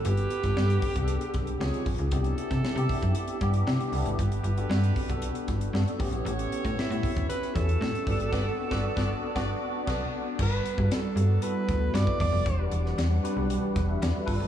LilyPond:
<<
  \new Staff \with { instrumentName = "Alto saxophone" } { \time 4/4 \key g \major \tempo 4 = 116 g'2.~ g'8 r8 | r1 | r1 | r4 e'4 b'8 a'4.~ |
a'2. r4 | b'4 a'4 b'4 d''8 d''8~ | d''8 r2. r8 | }
  \new Staff \with { instrumentName = "Horn section" } { \time 4/4 \key g \major <b g' b'>2~ <b g' b'>8 r8 <eis' gis' cis''>8 r8 | <c' e' a'>2.~ <c' e' a'>8 r8 | <b g' b'>2. r8 <g' a' cis''>8~ | <g' a' cis''>2. r8 <g' b' d''>8 |
<g' b' d''>8 r16 <g' b' d''>8 <g' b' d''>8 r16 <g' b' d''>8 r8 <a' b' d''>8 r8 | r1 | r1 | }
  \new Staff \with { instrumentName = "Tine electric piano" } { \time 4/4 \key g \major << { r1 | r1 | r1 | r1 |
r1 | r1 | r2 r8 <fis' b'>16 <b' e''>16 <a' d''>16 <fis' b'>8 r16 | } \\ { <b d' fis' a'>8 r16 <b d' a' fis''>8. r16 <b d' gis' a' fis''>8. r8 <bis dis' eis' gis'>8. r16 | <b d' e' g'>8. r8 <b d' e' g'>8. r8 <b d' e' g'>8. r16 <b d' e' a'>8 | r8. <b d' fis' a'>8. r16 <b d' fis' a'>8. r8 <b d' fis' a'>8 <b cis' e' g'>8~ | <b cis' e' g'>4 r16 <b cis' e' fis'>8. r8 <b cis' e' fis'>8. r16 <b d' fis' a'>8 |
<b d' fis'>8 r16 <b d' fis'>8 <b d' fis'>8 r16 <b d' fis'>8 r8 <b d' fis' a'>8 r8 | r8. <b e' fis' a'>8. r8 <b e' fis' a'>8. r16 <b e' fis' b'>8. r16 | r16 <d' fis' g' b'>8. r8 <d' fis' g' b'>8. r4 r16 <d' f' a' b'>8 | } >> }
  \new Staff \with { instrumentName = "Analog synth pad" } { \time 4/4 \key g \major r1 | r1 | r1 | r1 |
r1 | <g b fis'>1 | <e g d' fis''>2.~ <e g d' fis''>8 <g f' a' b'>8 | }
  \new Staff \with { instrumentName = "FM bass" } { \clef bass \time 4/4 \key g \major g,,8 r16 g,,16 g,8 r16 c,8 r16 b,,8 cis,16 r16 ais,,16 cis,16 | c,8 r16 c16 r16 c16 r16 fis,16 r8 g,8 c16 r16 c,16 gis,,16 | g,,8 g,,8 g,8 r16 b,,8 r16 g,,8 g,16 r16 a,,16 ais,,16 | a,,8 r16 a,16 a,16 a,16 r16 d,16 r8 e,8 a,16 r16 g,,16 gis,,16 |
g,,8 r16 g,,8 g,,8 r16 g,,8 r8 b,,8 r8 | g,,8 r16 g,16 r8 g,8 r8 d,8 g,16 r16 e,16 f,,16 | e,,8 e,,8 e,8 r16 b,,8 r16 e,,8 e,16 r16 g,,16 gis,,16 | }
  \new DrumStaff \with { instrumentName = "Drums" } \drummode { \time 4/4 hh16 hh16 hh16 <hh bd sn>16 sn16 hh16 <hho bd>16 <hh bd>16 hh16 hh16 <hh bd sn>16 hh16 sn16 hh16 <hho bd>16 hh16 | <hh bd>16 hh16 hh16 <hh bd sn>16 sn16 hh16 <hho bd>16 <hh bd>16 hh16 hh16 <hh bd sn>16 hh16 sn16 hh16 hho16 hh16 | <hh bd>16 hh16 hh16 hh16 sn16 hh16 <hho bd>16 <hh bd>16 hh16 hh16 <hh bd sn>16 hh16 sn16 hh16 <hho bd>16 hh16 | hh16 hh16 hh16 <hh bd sn>16 sn16 hh16 <hho bd>16 <hh bd>16 hh16 hh16 <hh bd sn>16 hh16 sn16 hh16 <hho bd>16 hh16 |
<cymc bd sn>8. <bd sn>16 r16 <bd sn>8. <bd sn>4 <cymc bd sn>4 | <cymc bd>8 hh16 bd16 <hh sn>8 hh8 hh8 <hh bd sn>8 <hh sn>16 bd16 <hho bd>8 | <hh bd>8 hh16 sn16 <hh sn>8 hh8 hh8 <hh bd sn>8 <hh sn>8 <hho bd>8 | }
>>